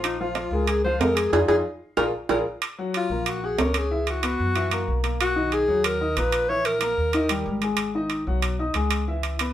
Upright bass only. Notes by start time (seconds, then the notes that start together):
Already playing: A#1
0.51 C#2
0.99 F2
1.32 F2
1.48 F2
1.97 A#1
2.29 A#1
3.09 A#1
3.58 C#2
4.40 F#2
4.88 B1
5.68 D#2
6.17 A#1
6.97 D#2
7.46 G#1
8.27 B1
8.74 C#2